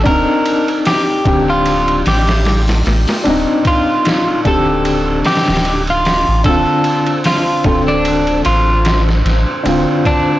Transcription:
0.03 sub bass D1, felt piano C4 D4, clean electric guitar A#4, kick, ride
0.09 felt piano D#4
0.46 ride
0.68 ride
0.85 clean electric guitar G4, snare, open hi-hat
1.25 sub bass D1, felt piano D3 C4 G4, kick, ride
1.50 clean electric guitar F4
1.66 ride
1.88 ride
2.06 sub bass A1, clean electric guitar G4, snare, open hi-hat
2.27 snare, open hi-hat
2.45 snare, open hi-hat
2.68 snare, open hi-hat
2.86 sub bass A1, snare, open hi-hat
3.08 snare, open hi-hat
3.24 sub bass D1, felt piano C4 D4, ride
3.29 felt piano D#4
3.65 clean electric guitar F4, kick, ride
4.05 snare, ride
4.45 sub bass D1, felt piano D3 C4 G4, clean electric guitar A4, kick, ride
4.85 ride
5.25 clean electric guitar G4, snare, open hi-hat
5.36 snare, open hi-hat
5.46 sub bass D1, snare, open hi-hat
5.55 snare, open hi-hat
5.65 ride
5.87 clean electric guitar F4, ride
6.05 snare, open hi-hat
6.28 sub bass A1
6.44 sub bass D1, felt piano D3 C4, clean electric guitar A4, synth texture C5, kick, ride
6.49 felt piano F4
6.84 ride
7.07 ride
7.24 clean electric guitar F4, snare, open hi-hat
7.64 sub bass D1, felt piano D3 C4 A4, kick, ride
7.88 clean electric guitar D4
8.05 ride
8.27 ride
8.45 sub bass A1, clean electric guitar F4, ride
8.85 snare, ride
9.09 snare
9.25 sub bass A1, snare, ride
9.63 sub bass D1, felt piano D3 C4, ride
9.68 felt piano F4
10.05 clean electric guitar D4, kick, ride

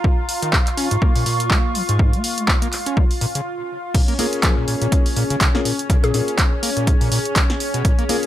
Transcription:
Already playing: analog synth pad F4, ambient pad F5 A#5
0.04 acid bass A#2, kick
0.21 ambient pad C#6
0.29 open hi-hat
0.42 acid bass D#3, closed hi-hat
0.53 acid bass A#2, kick, clap
0.67 clap, closed hi-hat
0.77 acid bass C#4, open hi-hat
0.91 acid bass G#2, closed hi-hat
1.02 acid bass A#3, kick
1.15 acid bass A#2, open hi-hat
1.26 acid bass A#2, open hi-hat
1.40 closed hi-hat
1.51 acid bass A#3, kick, clap
1.75 acid bass F3, open hi-hat
1.89 acid bass G#2, closed hi-hat
1.99 kick
2.13 acid bass A#3, closed hi-hat
2.24 open hi-hat
2.38 acid bass G#3, closed hi-hat
2.48 acid bass A#3, kick, clap
2.62 acid bass A#3, closed hi-hat
2.73 clap, open hi-hat
2.86 acid bass C#4, closed hi-hat
2.97 acid bass F3, kick
3.11 open hi-hat
3.21 acid bass A#2, open hi-hat
3.35 acid bass C#3, closed hi-hat
3.94 acid bass A#2, analog synth pad C#4, ambient pad C#4, kick, closed hi-hat, crash
4.03 ambient pad G#4
4.08 acid bass A#3, closed hi-hat
4.19 acid bass A#3, grand piano A#3 C#4 F4 G#4, open hi-hat
4.33 closed hi-hat
4.43 acid bass F3, kick, clap, closed hi-hat
4.57 acid bass A#2
4.68 acid bass A#2, open hi-hat
4.82 acid bass A#2, closed hi-hat
4.92 kick, closed hi-hat
5.06 open hi-hat
5.16 acid bass A#2, open hi-hat
5.30 acid bass C#3, closed hi-hat
5.41 acid bass C#3, kick, clap, closed hi-hat
5.55 acid bass A#3, grand piano A#3 C#4 F4 G#4, snare
5.65 acid bass A#2, open hi-hat
5.79 closed hi-hat
5.89 acid bass C#3, kick, closed hi-hat
6.03 acid bass A#2, synth pluck G#4, closed hi-hat
6.14 acid bass A#2, grand piano A#3 C#4 F4 G#4, open hi-hat
6.28 closed hi-hat
6.38 kick, clap, closed hi-hat
6.63 acid bass A#3, open hi-hat
6.77 acid bass A#2, closed hi-hat
6.87 acid bass G#2, kick, closed hi-hat
7.01 acid bass A#2, open hi-hat
7.11 acid bass A#2, open hi-hat
7.25 closed hi-hat
7.36 acid bass F3, kick, clap, closed hi-hat
7.50 snare
7.60 open hi-hat
7.74 acid bass B2, closed hi-hat
7.85 kick, closed hi-hat
7.99 acid bass A#3, closed hi-hat
8.09 acid bass A#3, grand piano A#3 C#4 F4 G#4, open hi-hat
8.23 closed hi-hat

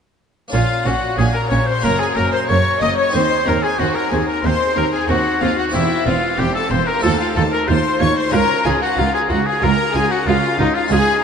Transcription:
0.48 harpsichord A#3 C#4 F4
0.52 double bass section A#1, harpsichord A#2, cello section A#2, viola section C#4, violin section F4 F5, oboe F4
0.85 double bass section A#1, harpsichord A#2, cello section A#2, viola section C#4, oboe F#4, violin section F#4 F#5
1.17 double bass section A#1, cello section A#2, harpsichord A#2, viola section C#4, oboe G#4, violin section G#4 G#5
1.33 oboe A#4, violin section A#4 A#5
1.49 double bass section A#1, harpsichord A#2, cello section A#2, viola section C#4, oboe C#5, violin section C#5 C#6
1.67 oboe C5, violin section C5 C6
1.80 cello section F#2, harpsichord A#3 C#4 F#4, viola section A#3, violin section A#4 A#5, oboe A#4
1.84 double bass section F#1, harpsichord F#2
1.99 oboe G#4, violin section G#4 G#5
2.16 double bass section F#1, cello section F#2, harpsichord F#2, viola section A#3, oboe A#4, violin section A#4 A#5
2.32 violin section C5 C6, oboe C5
2.48 double bass section F#1, harpsichord F#2, cello section F#2, viola section A#3, oboe C#5, violin section C#5 C#6
2.81 double bass section F#1, harpsichord F#2, cello section F#2, viola section A#3, violin section D#5 D#6, oboe D#5
2.97 violin section C#5 C#6, oboe C#5
3.10 harpsichord C4 D#4 F#4
3.14 harpsichord D#2, double bass section D#2, cello section D#2, viola section C4, violin section C5 C6, oboe C5
3.46 harpsichord D#2, cello section D#2, double bass section D#2, viola section C4, violin section A#4 A#5, oboe A#4
3.63 violin section G#4 G#5, oboe G#4
3.78 double bass section D#2, cello section D#2, harpsichord D#2, viola section C4, violin section F#4 F#5, oboe F#4
3.94 oboe A#4, violin section A#4 A#5
4.11 harpsichord D#2, cello section D#2, double bass section D#2, viola section C4, violin section G#4 G#5, oboe G#4
4.27 violin section A#4 A#5, oboe A#4
4.43 double bass section D#2, harpsichord D#2, cello section D#2, viola section C4, violin section C5 C6, oboe C5
4.76 harpsichord D#2, double bass section D#2, cello section D#2, viola section C4, violin section A#4 A#5, oboe A#4
4.92 violin section G#4 G#5, oboe G#4
5.08 double bass section D#2, harpsichord D#2, cello section D#2, viola section C4, violin section F#4 F#5, oboe F#4
5.41 double bass section D#2, harpsichord D#2, cello section D#2, viola section C4, violin section F4 F5, oboe F4
5.57 violin section F#4 F#5, oboe F#4
5.69 harpsichord A#3 C4 G4
5.74 double bass section E1, harpsichord E2, cello section E2, viola section C4, violin section E4 E5, oboe E4
6.06 double bass section E1, harpsichord E2, cello section E2, viola section C4, oboe F4, violin section F4 F5
6.38 double bass section E1, harpsichord E2, cello section E2, viola section C4, violin section G4 G5, oboe G4
6.54 violin section A4 A5, oboe A4
6.70 double bass section E1, harpsichord E2, cello section E2, viola section C4, oboe C5, violin section C5 C6
6.87 oboe A#4, violin section A#4 A#5
6.99 harpsichord A3 C4 F4, viola section F4, oboe A4, violin section A5
7.04 double bass section D#2, harpsichord D#2, cello section D#2, violin section A4
7.19 oboe F4, violin section F4 F5
7.35 harpsichord D#2, double bass section D#2, cello section D#2, viola section F4, violin section A4 A5, oboe A4
7.52 oboe A#4, violin section A#4 A#5
7.67 harpsichord D#2, double bass section D#2, cello section D#2, viola section F4, oboe C5, violin section C5 C6
7.99 double bass section D#2, harpsichord D#2, cello section D#2, viola section F4, violin section C#5 C#6, oboe C#5
8.16 violin section C5 C6, oboe C5
8.30 harpsichord C#2 C#4 F4, double bass section C#2, cello section C#2, viola section F4, violin section A#4 A#5, oboe A#4
8.64 double bass section C#2, harpsichord C#2, cello section C#2, viola section F4, oboe G#4, violin section G#4 G#5
8.81 oboe F#4, violin section F#4 F#5
8.96 double bass section C#2, harpsichord C#2, cello section C#2, viola section F4, violin section F4 F5, oboe F4
9.14 violin section G#4 G#5, oboe G#4
9.29 double bass section C#2, harpsichord C#2, cello section C#2, viola section F4, violin section F#4 F#5, oboe F#4
9.46 violin section G#4 G#5, oboe G#4
9.60 double bass section C#2, harpsichord C#2, cello section C#2, viola section F4, violin section A#4 A#5, oboe A#4
9.93 double bass section C#2, harpsichord C#2, cello section C#2, viola section F4, violin section G#4 G#5, oboe G#4
10.10 violin section F#4 F#5, oboe F#4
10.26 double bass section C#2, cello section C#2, harpsichord C#2, oboe F4, violin section F4 F5, viola section F4
10.58 double bass section C#2, cello section C#2, harpsichord C#2, violin section D#4 D#5, oboe D#4, viola section F4
10.74 violin section F4 F5, oboe F4
10.87 harpsichord G#3 C#4 F4, violin section G#5
10.91 double bass section C#2, cello section C#2, harpsichord C#2, viola section F4, violin section G#4, oboe G#4

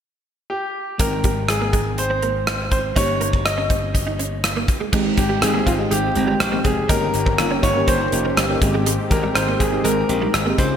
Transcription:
0.50 grand piano G4
0.98 slap bass G#1, fm electric piano G#2 G#3 C4 D#4 G5, clean electric guitar G#3, grand piano A#4, kick, closed hi-hat
1.12 muted clean electric guitar stroke
1.24 clean electric guitar G3, kick, closed hi-hat
1.49 grand piano G#4, muted clean electric guitar stroke, cross-stick, closed hi-hat
1.61 clean electric guitar A#3
1.73 clean electric guitar G#3, kick, closed hi-hat
1.98 grand piano C5, muted clean electric guitar stroke, closed hi-hat
2.10 clean electric guitar C4
2.22 clean electric guitar A#3, closed hi-hat
2.47 cross-stick, closed hi-hat
2.71 clean electric guitar C4, grand piano C5, kick, closed hi-hat
2.95 slap bass G1, fm electric piano G2 A#3 C#4 D#4 G4, clean electric guitar D#4, grand piano C#5, kick, closed hi-hat
3.08 muted clean electric guitar stroke
3.21 clean electric guitar A#3, closed hi-hat
3.33 kick
3.45 grand piano D#5, muted clean electric guitar stroke, cross-stick, closed hi-hat
3.58 clean electric guitar C#4
3.70 clean electric guitar C4, kick, closed hi-hat
3.94 muted clean electric guitar stroke, kick, closed hi-hat
4.07 clean electric guitar D#4
4.19 clean electric guitar C#4, closed hi-hat
4.44 cross-stick, closed hi-hat
4.56 clean electric guitar A#3
4.68 muted clean electric guitar stroke, kick, closed hi-hat
4.80 clean electric guitar G#3
4.93 slap bass G#1, fm electric piano G#2 G#3 C4 D#4 G4, analog synth pad D#3 G#3 C4 G4, clean electric guitar G#3, kick, crash
5.17 slap bass G#1, grand piano G4, muted clean electric guitar stroke, kick, closed hi-hat
5.29 clean electric guitar G3
5.41 slap bass G#1, fm electric piano G#3 C4 D#4 G4, grand piano G#4, muted clean electric guitar stroke, cross-stick, closed hi-hat
5.54 clean electric guitar A#3
5.66 slap bass G#1, clean electric guitar C4, grand piano F4, kick, closed hi-hat
5.79 fm electric piano G#3 C4 D#4 G4
5.91 slap bass G#1, clean electric guitar G#3, grand piano G4, closed hi-hat
6.15 slap bass G1, fm electric piano G#3 C4 D#4 G4, muted clean electric guitar stroke, closed hi-hat
6.27 clean electric guitar G3
6.40 slap bass A#1, muted clean electric guitar stroke, cross-stick, closed hi-hat
6.52 fm electric piano G#3 C4 D#4 G4, clean electric guitar A#3
6.64 slap bass F1, clean electric guitar C4, grand piano G#4, kick, closed hi-hat
6.89 slap bass G1, fm electric piano G2 A#3 C#4 D#4 G4, analog synth pad A#3 C#4, clean electric guitar D#4, grand piano A#4, kick, closed hi-hat
7.14 slap bass G1, muted clean electric guitar stroke, closed hi-hat
7.26 clean electric guitar C4, kick
7.38 slap bass G1, fm electric piano A#3 C#4 D#4 F4, muted clean electric guitar stroke, cross-stick, closed hi-hat
7.51 clean electric guitar C#4
7.63 slap bass G1, clean electric guitar D#4, grand piano C#5, kick, closed hi-hat
7.75 fm electric piano A#3 C#4 D#4 G4
7.88 slap bass G1, clean electric guitar C4, grand piano C5, kick, closed hi-hat
8.12 slap bass F1, fm electric piano A#3 C#4 D#4 G4, muted clean electric guitar stroke, closed hi-hat
8.25 clean electric guitar A#3
8.37 slap bass G1, clean electric guitar G3, cross-stick, closed hi-hat
8.49 fm electric piano A#3 C#4 D#4 G4, muted clean electric guitar stroke
8.61 slap bass G#1, fm electric piano G#2 G#3 C4 D#4 G4, analog synth pad G#3 C4, kick, closed hi-hat
8.74 clean electric guitar G#3
8.86 clean electric guitar G#3, closed hi-hat
9.11 slap bass G#1, grand piano A#4, muted clean electric guitar stroke, kick, closed hi-hat
9.23 clean electric guitar G3
9.34 slap bass G#1, fm electric piano G#3 C4 D#4 A#4, grand piano C5, muted clean electric guitar stroke, cross-stick, closed hi-hat
9.48 clean electric guitar A#3
9.59 slap bass G#1, clean electric guitar C4, grand piano G#4, kick, closed hi-hat
9.72 fm electric piano G#3 C4 D#4 G4
9.84 slap bass G#1, clean electric guitar G#3, grand piano A#4, closed hi-hat
10.09 slap bass A#1, fm electric piano G#3 C4 D#4 G4, muted clean electric guitar stroke, closed hi-hat
10.22 clean electric guitar G3
10.34 slap bass G#1, muted clean electric guitar stroke, cross-stick, closed hi-hat
10.46 fm electric piano G#3 C4 D#4 G4, clean electric guitar A#3
10.58 slap bass C#2, fm electric piano C#3 G#3 C#4 F4 G#4, analog synth pad C#3 F3 F4, clean electric guitar C4, grand piano C5, kick, closed hi-hat

